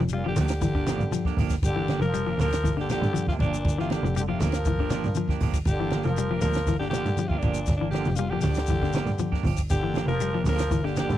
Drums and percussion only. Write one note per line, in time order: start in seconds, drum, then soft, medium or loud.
0.09 ride bell medium
0.09 shekere loud
0.36 snare soft
0.36 open hi-hat medium
0.36 high conga loud
0.36 low conga medium
0.36 shekere medium
0.48 snare medium
0.48 ride bell medium
0.48 shekere medium
0.61 kick medium
0.61 snare soft
0.61 ride bell medium
0.61 shekere medium
0.75 kick medium
0.87 snare medium
0.87 ride bell medium
0.87 high conga loud
0.87 shekere medium
1.00 high conga medium
1.00 low conga medium
1.00 shekere soft
1.11 snare soft
1.11 ride bell medium
1.11 high conga medium
1.11 shekere medium
1.25 kick medium
1.25 snare soft
1.37 kick medium
1.37 open hi-hat medium
1.37 high conga medium
1.37 low conga medium
1.37 shekere soft
1.50 kick medium
1.50 snare soft
1.50 ride bell medium
1.50 shekere medium
1.63 kick loud
1.63 ride bell medium
1.63 shekere medium
1.88 snare medium
1.88 ride bell medium
1.88 high conga medium
1.88 shekere soft
2.02 shekere soft
2.14 ride bell medium
2.14 shekere loud
2.39 open hi-hat medium
2.39 high conga loud
2.39 low conga loud
2.39 shekere medium
2.52 snare medium
2.52 ride bell medium
2.52 high conga medium
2.52 shekere medium
2.64 kick medium
2.64 ride bell medium
2.64 shekere medium
2.79 snare soft
2.90 snare medium
2.90 ride bell medium
2.90 high conga loud
2.90 shekere medium
3.03 snare soft
3.03 ride bell medium
3.03 high conga medium
3.03 low conga medium
3.03 shekere soft
3.14 ride bell medium
3.14 high conga medium
3.14 shekere loud
3.27 kick medium
3.27 snare soft
3.27 high conga medium
3.39 kick medium
3.39 ride bell soft
3.39 low conga medium
3.39 shekere soft
3.54 shekere medium
3.65 kick medium
3.65 ride bell medium
3.65 shekere medium
3.79 snare soft
3.90 snare medium
3.90 ride bell medium
3.90 high conga medium
3.90 shekere soft
4.04 snare soft
4.04 shekere soft
4.15 ride bell medium
4.15 shekere loud
4.40 snare soft
4.40 open hi-hat medium
4.40 high conga loud
4.40 low conga medium
4.40 shekere medium
4.52 snare medium
4.52 ride bell medium
4.52 shekere medium
4.65 kick medium
4.65 ride bell medium
4.65 shekere medium
4.78 kick medium
4.90 snare medium
4.90 ride bell medium
4.90 high conga loud
4.90 shekere medium
5.04 snare soft
5.04 high conga medium
5.04 low conga medium
5.04 shekere soft
5.15 ride bell medium
5.15 high conga medium
5.15 shekere loud
5.28 kick medium
5.28 snare soft
5.28 high conga medium
5.40 kick medium
5.40 open hi-hat medium
5.40 high conga medium
5.40 low conga medium
5.40 shekere soft
5.54 kick medium
5.54 ride bell medium
5.54 shekere medium
5.65 kick medium
5.65 ride bell medium
5.65 shekere medium
5.90 snare medium
5.90 ride bell medium
5.90 high conga medium
5.90 shekere soft
6.03 snare soft
6.03 shekere soft
6.16 ride bell medium
6.16 shekere loud
6.41 open hi-hat medium
6.41 high conga loud
6.41 low conga loud
6.41 shekere medium
6.54 snare medium
6.54 ride bell medium
6.54 high conga medium
6.54 shekere medium
6.67 kick medium
6.67 snare soft
6.67 ride bell medium
6.67 shekere medium
6.81 snare soft
6.91 snare medium
6.91 ride bell medium
6.91 high conga loud
6.91 shekere medium
7.06 snare soft
7.06 ride bell medium
7.06 shekere soft
7.17 ride bell medium
7.17 high conga medium
7.17 shekere loud
7.30 kick medium
7.30 high conga medium
7.42 kick medium
7.42 ride bell medium
7.42 high conga medium
7.42 low conga medium
7.42 shekere soft
7.54 shekere medium
7.66 kick loud
7.66 snare soft
7.66 ride bell medium
7.66 shekere medium
7.92 snare medium
7.92 ride bell medium
7.92 high conga medium
7.92 shekere soft
8.05 snare soft
8.05 shekere soft
8.16 ride bell medium
8.16 shekere loud
8.41 open hi-hat medium
8.41 high conga loud
8.41 low conga medium
8.41 shekere medium
8.55 snare medium
8.55 ride bell medium
8.55 high conga medium
8.55 shekere medium
8.66 kick medium
8.66 snare soft
8.66 ride bell soft
8.66 shekere medium
8.82 kick medium
8.82 snare soft
8.93 snare medium
8.93 ride bell medium
8.93 high conga loud
8.93 shekere medium
9.07 snare soft
9.07 high conga medium
9.07 low conga medium
9.07 shekere soft
9.19 ride bell medium
9.19 high conga medium
9.19 shekere medium
9.32 kick medium
9.32 snare soft
9.43 kick medium
9.43 open hi-hat medium
9.43 high conga medium
9.43 low conga loud
9.43 shekere soft
9.57 kick medium
9.57 ride bell medium
9.57 shekere medium
9.70 kick medium
9.70 snare soft
9.70 ride bell medium
9.70 shekere medium
9.94 snare medium
9.94 ride bell medium
9.94 high conga medium
9.94 shekere soft
10.08 snare soft
10.08 shekere soft
10.20 ride bell medium
10.20 shekere medium
10.45 open hi-hat medium
10.45 high conga loud
10.45 low conga medium
10.45 shekere medium
10.59 snare medium
10.59 ride bell medium
10.59 high conga medium
10.59 shekere medium
10.71 kick medium
10.71 ride bell medium
10.71 shekere medium
10.86 snare soft
10.96 snare medium
10.96 ride bell medium
10.96 high conga loud
10.96 shekere medium
11.10 snare soft
11.10 ride bell medium
11.10 high conga medium
11.10 low conga medium
11.10 shekere soft